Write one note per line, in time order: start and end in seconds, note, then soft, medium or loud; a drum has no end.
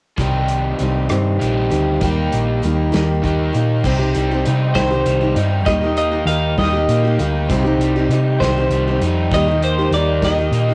0.18 0.73 C2 medium
0.18 0.80 C3 medium
0.18 1.39 D#3 medium
0.18 0.79 G3 medium
0.18 0.79 C4 medium
0.18 0.82 D#4 medium
0.18 0.82 G4 medium
0.18 kick loud
0.18 closed hi-hat medium
0.49 closed hi-hat medium
0.79 1.07 C2 medium
0.79 1.10 G3 medium
0.79 1.10 C4 medium
0.79 1.09 D#4 medium
0.79 1.09 G4 medium
0.79 closed hi-hat medium
1.09 1.37 G2 medium
1.09 1.72 C3 soft
1.09 2.02 G3 medium
1.09 1.72 C4 medium
1.09 1.71 D#4 medium
1.09 1.70 G4 medium
1.09 cross-stick medium
1.09 closed hi-hat medium
1.39 1.68 A#1 medium
1.39 1.99 C3 medium
1.39 1.99 D#3 medium
1.39 2.01 G3 medium
1.39 2.02 D#4 medium
1.39 2.03 G4 medium
1.39 closed hi-hat medium
1.70 1.98 D2 medium
1.70 2.02 C4 soft
1.70 2.02 D#4 soft
1.70 2.01 G4 soft
1.70 closed hi-hat medium
2.01 2.28 D#2 medium
2.01 2.62 D#3 medium
2.01 2.61 G3 medium
2.01 2.63 A#3 medium
2.01 2.63 D#4 medium
2.01 2.64 G4 medium
2.01 kick loud
2.01 closed hi-hat medium
2.32 2.60 A#1 medium
2.32 closed hi-hat medium
2.62 2.90 D#2 medium
2.62 2.92 G3 medium
2.62 2.92 A#3 medium
2.62 2.92 D#4 medium
2.62 closed hi-hat medium
2.66 2.91 G4 medium
2.92 3.21 D#2 medium
2.92 3.54 D#3 medium
2.92 3.54 G3 medium
2.92 3.54 A#3 medium
2.92 3.54 D#4 medium
2.92 3.52 G4 medium
2.92 snare medium
2.92 closed hi-hat medium
3.22 3.51 D#2 medium
3.22 3.82 D#3 medium
3.22 3.83 A#3 medium
3.22 3.83 D#4 medium
3.22 3.84 G4 medium
3.22 kick medium
3.22 closed hi-hat medium
3.53 3.82 A#2 medium
3.53 3.85 A#3 soft
3.53 3.85 D#4 soft
3.53 3.84 G4 soft
3.53 closed hi-hat soft
3.84 4.13 C2 medium
3.84 4.00 C3 medium
3.84 4.00 G3 medium
3.84 4.00 C4 medium
3.84 7.46 D#4 medium
3.84 4.00 D#4 medium
3.84 3.98 G4 medium
3.84 5.66 C5 medium
3.84 10.74 G5 medium
3.84 kick loud
3.84 crash medium
3.99 4.31 D#4 soft
3.99 4.30 G4 medium
4.03 4.32 C4 soft
4.15 4.44 C2 medium
4.15 5.05 G3 medium
4.15 closed hi-hat medium
4.31 4.46 C4 soft
4.31 4.46 D#4 soft
4.31 4.46 G4 medium
4.45 4.74 C3 medium
4.45 4.76 G3 medium
4.45 4.76 C4 medium
4.45 4.76 D#4 medium
4.45 4.77 G4 medium
4.45 closed hi-hat medium
4.75 5.04 C2 medium
4.75 4.91 C3 medium
4.75 5.67 D#3 medium
4.75 4.92 G3 medium
4.75 4.92 C4 medium
4.75 4.92 D#4 medium
4.75 4.89 G4 medium
4.75 5.32 C5 medium
4.75 kick medium
4.75 snare medium
4.75 closed hi-hat medium
4.91 5.23 C4 soft
4.91 5.22 D#4 soft
4.91 5.20 G4 soft
5.06 5.35 C2 medium
5.06 5.98 G3 medium
5.06 closed hi-hat medium
5.21 5.36 C4 soft
5.21 5.37 D#4 soft
5.21 5.36 G4 soft
5.36 5.66 G2 medium
5.36 5.66 G3 medium
5.36 5.67 C4 medium
5.36 5.67 D#4 medium
5.36 5.68 G4 medium
5.36 closed hi-hat medium
5.66 6.23 D#2 medium
5.66 5.82 D#3 medium
5.66 5.82 G3 medium
5.66 5.83 A#3 medium
5.66 5.82 D#4 medium
5.66 5.80 G4 medium
5.66 7.48 A#4 medium
5.66 5.97 D#5 medium
5.66 kick loud
5.66 closed hi-hat medium
5.81 6.14 A#3 soft
5.81 6.12 D#4 soft
5.81 6.10 G4 medium
5.97 6.89 A#3 medium
5.97 6.26 D#5 medium
5.97 closed hi-hat medium
6.12 6.27 A#3 soft
6.12 6.28 D#4 soft
6.12 6.27 G4 soft
6.26 6.55 D#2 medium
6.26 6.57 G3 medium
6.26 6.58 A#3 medium
6.26 6.58 F5 medium
6.26 closed hi-hat medium
6.30 6.59 D#4 medium
6.30 6.59 G4 medium
6.58 6.87 D#2 medium
6.58 6.73 D#3 medium
6.58 6.73 G3 medium
6.58 6.74 A#3 medium
6.58 6.74 D#4 medium
6.58 6.72 G4 medium
6.58 7.23 D#5 medium
6.58 kick medium
6.58 snare loud
6.58 closed hi-hat medium
6.73 7.05 A#3 soft
6.73 7.05 D#4 soft
6.73 7.03 G4 medium
6.88 7.17 A#2 medium
6.88 7.50 A#3 medium
6.88 closed hi-hat medium
7.04 7.19 A#3 soft
7.04 7.19 D#4 soft
7.04 7.19 G4 medium
7.19 7.47 D2 medium
7.19 7.49 G3 medium
7.19 7.50 A#3 medium
7.19 7.50 D#4 medium
7.19 7.51 G4 medium
7.19 closed hi-hat medium
7.48 7.78 C2 medium
7.48 7.65 C3 medium
7.48 7.65 G3 medium
7.48 7.65 C4 medium
7.48 10.74 D#4 medium
7.48 7.65 D#4 medium
7.48 7.63 G4 medium
7.48 9.29 C5 medium
7.48 kick loud
7.48 closed hi-hat medium
7.64 7.96 C4 soft
7.64 7.96 D#4 medium
7.64 7.95 G4 medium
7.78 8.07 C2 medium
7.78 8.72 G3 medium
7.78 closed hi-hat medium
7.96 8.11 C4 soft
7.96 8.11 D#4 medium
7.96 8.11 G4 medium
8.09 8.38 C3 medium
8.09 8.41 G3 medium
8.09 8.42 C4 medium
8.09 closed hi-hat medium
8.13 8.42 D#4 medium
8.13 8.42 G4 medium
8.40 8.69 C2 medium
8.40 8.57 C3 medium
8.40 9.32 D#3 medium
8.40 8.57 G3 medium
8.40 8.57 C4 medium
8.40 8.57 D#4 medium
8.40 8.56 G4 medium
8.40 8.97 C5 medium
8.40 kick medium
8.40 snare loud
8.40 closed hi-hat medium
8.57 8.89 C4 soft
8.57 8.88 D#4 soft
8.57 8.86 G4 soft
8.70 8.99 C2 medium
8.70 9.63 G3 medium
8.70 closed hi-hat medium
8.88 9.03 C4 soft
8.88 9.03 D#4 soft
8.88 9.02 G4 soft
9.01 9.30 F2 medium
9.01 9.32 G3 medium
9.01 9.33 C4 medium
9.01 closed hi-hat medium
9.05 9.34 D#4 medium
9.05 9.34 G4 medium
9.31 9.88 D#2 medium
9.31 9.48 D#3 medium
9.31 9.48 G3 medium
9.31 9.48 A#3 medium
9.31 9.49 D#4 medium
9.31 10.74 A#4 medium
9.31 9.61 D#5 loud
9.31 kick loud
9.31 closed hi-hat medium
9.35 9.47 G4 medium
9.48 9.79 A#3 soft
9.48 9.78 D#4 soft
9.48 9.77 G4 medium
9.62 10.53 A#3 medium
9.62 9.94 C5 medium
9.62 closed hi-hat medium
9.78 9.93 A#3 soft
9.78 9.93 D#4 soft
9.78 9.93 G4 soft
9.91 10.20 D#2 medium
9.91 10.22 G3 medium
9.91 10.23 A#3 medium
9.91 10.24 D#4 medium
9.91 10.21 D5 medium
9.91 closed hi-hat medium
9.96 10.24 G4 medium
10.22 10.51 D#2 medium
10.22 10.38 D#3 medium
10.22 10.38 G3 medium
10.22 10.38 A#3 medium
10.22 10.39 D#4 medium
10.22 10.37 G4 medium
10.22 10.74 D#5 medium
10.22 kick medium
10.22 snare loud
10.22 closed hi-hat medium
10.39 10.70 A#3 soft
10.39 10.69 D#4 soft
10.39 10.68 G4 soft
10.51 10.74 A#2 medium
10.51 10.74 A#3 medium
10.51 closed hi-hat medium
10.69 10.74 D#4 soft
10.69 10.74 G4 soft